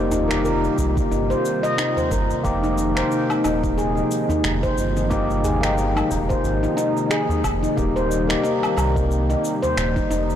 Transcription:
Already playing: analog synth bass F1, analog synth pad C3 D#3 G3 A#3 F4, tine electric piano A#3 D#4 G4, handpan D#4, singing bowl D#4
0.11 handpan D#4, tabla ge, cabasa
0.28 tine electric piano A#3 D#4 G4, finger snap, cabasa
0.45 handpan A#4, cabasa
0.64 cabasa
0.77 analog synth bass C2, kick, tabla na, cabasa
0.97 kick, cabasa
1.11 analog synth bass G1, handpan D#4, cabasa
1.30 handpan C5, tabla tin, cabasa
1.45 cabasa
1.63 handpan D#5, tabla tin, cabasa
1.78 handpan D#4, finger snap, tabla na, cabasa
1.97 handpan C5, tabla ge, cabasa
2.11 analog synth bass G1, handpan A#4, kick, cabasa
2.30 tabla na, tabla tin, cabasa
2.43 analog synth bass F1, analog synth pad D#3 F3 G#3 D#4, tine electric piano A#3 D#4 G4, kick, cabasa
2.63 handpan D#4, cabasa
2.78 cabasa
2.95 tine electric piano A#3 D#4, handpan C5, finger snap, cabasa
2.99 tine electric piano G5
3.11 cabasa
3.30 handpan D#4, cabasa, low woodblock
3.44 analog synth bass D#1, handpan D#4, cabasa, low woodblock
3.64 kick, cabasa
3.78 handpan G#4, cabasa
3.97 cabasa
4.11 cabasa
4.29 handpan D#4, tabla ge, cabasa
4.44 analog synth bass F1, finger snap, cabasa
4.63 handpan C5, kick, cabasa
4.78 analog synth bass G1, tabla tin, cabasa
4.97 handpan D#4, cabasa
5.10 tine electric piano A#3 D#4 G4, handpan D#4, kick, cabasa
5.30 cabasa
5.44 handpan G#4, tabla ge, cabasa
5.61 tine electric piano A#3 D#4 G5, finger snap, cabasa
5.78 cabasa
5.96 handpan D#4, cabasa, low woodblock
6.11 analog synth bass D#1, kick, tabla na, cabasa
6.29 handpan C5, kick, cabasa
6.45 analog synth bass G#1, cabasa
6.63 handpan D#4, tabla tin, cabasa
6.77 handpan D#4, cabasa
6.97 tabla tin, cabasa
7.10 handpan G#4, finger snap, tabla na, cabasa
7.29 tabla ge, cabasa
7.44 analog synth bass F1, kick, cabasa, low woodblock
7.63 handpan D#4, tabla na, tabla tin, cabasa
7.76 analog synth bass D#1, analog synth pad G3 A#3, tine electric piano A#3 D#4 G4, kick, cabasa
7.96 handpan C5, cabasa
8.11 cabasa
8.27 tine electric piano A#3 D#4 G4, handpan D#4, finger snap, cabasa
8.44 handpan D#4, cabasa
8.63 cabasa, low woodblock
8.77 analog synth bass C2, handpan A#4, tabla tin, cabasa, low woodblock
8.96 kick, cabasa
9.11 cabasa
9.30 handpan D#4, cabasa
9.45 cabasa
9.63 handpan C5, tabla ge, cabasa
9.77 analog synth bass D#1, finger snap, cabasa
9.96 handpan D#4, kick, cabasa
10.10 analog synth bass F1, handpan D#4, tabla tin, cabasa
10.30 cabasa

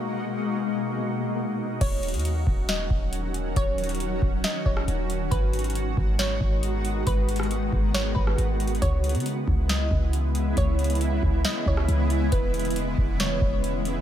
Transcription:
Already playing: ambient pad B2 G#3 A#3 D#4 F#4
1.81 808-style bass D#1, ambient pad D#3 F#3 C#4 F#4, synth pluck C#5, kick, closed hi-hat, crash
2.03 closed hi-hat
2.08 closed hi-hat
2.14 808-style bass D#2, closed hi-hat
2.19 closed hi-hat
2.25 closed hi-hat
2.47 808-style bass D#1, kick
2.69 synth pluck D#5, snare, closed hi-hat
2.90 808-style bass D#1, kick
3.13 closed hi-hat
3.34 closed hi-hat
3.56 808-style bass D#1, synth pluck C#5, kick, closed hi-hat
3.78 closed hi-hat
3.84 closed hi-hat
3.89 closed hi-hat
3.95 closed hi-hat
4.00 closed hi-hat
4.22 808-style bass D#1, kick
4.44 synth pluck D#5, snare, closed hi-hat
4.66 808-style bass D#1, synth pluck C#5, kick
4.77 cross-stick
4.88 808-style bass D#1, closed hi-hat
5.10 closed hi-hat
5.31 808-style bass G#1, ambient pad D#3 G#3 B3, synth pluck B4, kick, closed hi-hat
5.53 closed hi-hat
5.59 closed hi-hat
5.64 closed hi-hat
5.70 closed hi-hat
5.75 closed hi-hat
5.97 808-style bass G#1, kick
6.19 synth pluck C#5, snare, closed hi-hat
6.41 808-style bass G#1, kick
6.63 closed hi-hat
6.85 closed hi-hat
7.07 808-style bass G#1, synth pluck B4, kick, closed hi-hat
7.29 closed hi-hat
7.36 cross-stick, closed hi-hat
7.43 closed hi-hat
7.51 closed hi-hat
7.72 808-style bass G#1, kick
7.94 synth pluck C#5, snare, closed hi-hat
8.15 808-style bass G#1, synth pluck B4, kick
8.27 cross-stick
8.38 808-style bass G#1, closed hi-hat
8.60 closed hi-hat
8.68 closed hi-hat
8.75 closed hi-hat
8.82 808-style bass C#2, ambient pad C#3 E3 G#3 E4, synth pluck C#5, kick, closed hi-hat
9.04 closed hi-hat
9.09 closed hi-hat
9.15 808-style bass C#3, closed hi-hat
9.20 closed hi-hat
9.26 closed hi-hat
9.48 808-style bass C#2, kick
9.69 synth pluck D#5, snare, closed hi-hat
9.91 808-style bass C#2, kick
10.13 closed hi-hat
10.35 closed hi-hat
10.57 808-style bass C#2, synth pluck C#5, kick, closed hi-hat
10.79 closed hi-hat
10.84 closed hi-hat
10.90 closed hi-hat
10.95 closed hi-hat
11.01 closed hi-hat
11.23 808-style bass C#2, kick
11.45 synth pluck D#5, snare, closed hi-hat
11.66 808-style bass C#2, synth pluck C#5, kick
11.77 cross-stick
11.88 808-style bass C#2, closed hi-hat
12.10 closed hi-hat
12.32 808-style bass E1, synth pluck B4, kick, closed hi-hat
12.54 closed hi-hat
12.60 closed hi-hat
12.65 closed hi-hat
12.71 closed hi-hat
12.76 closed hi-hat
12.98 808-style bass E1, kick
13.20 synth pluck C#5, snare, closed hi-hat
13.41 808-style bass E1, kick
13.64 closed hi-hat
13.85 closed hi-hat

